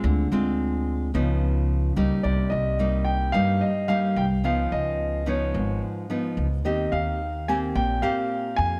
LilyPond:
<<
  \new Staff \with { instrumentName = "Grand piano" } { \time 4/4 \key c \minor \tempo 4 = 109 r1 | d''8 ees''4 g''8 f''8 ees''8 f''8 g''8 | f''8 ees''4 des''4 r4. | ees''8 f''4 aes''8 g''8 f''4 aes''8 | }
  \new Staff \with { instrumentName = "Nylon-string guitar" } { \time 4/4 \key c \minor << { <aes c' f'>8 <aes c' f'>4. <f ces' ees'>4. <g bes ees'>8~ | <g bes ees'>4 <g bes ees'>4 <g bes ees'>8 r8 <g bes ees'>8 r8 | <f ces' ees'>4. <f ces' ees'>4. <f ces' ees'>8 r8 | <bes c' g'>4 r8 <bes c' g'>4 <bes c' g'>4. | } \\ { d2 des2 | c2 g,2 | des2 aes,2 | ees2 bes,2 | } >> }
  \new Staff \with { instrumentName = "Upright bass" } { \clef bass \time 4/4 \key c \minor d,8 d,4. des,4. des,16 r16 | c,8 c,4. g,8 r4 c,8 | des,8 des,4. aes,,8 r4 des,8 | ees,8 ees,4. bes,,8 r4 f,8 | }
>>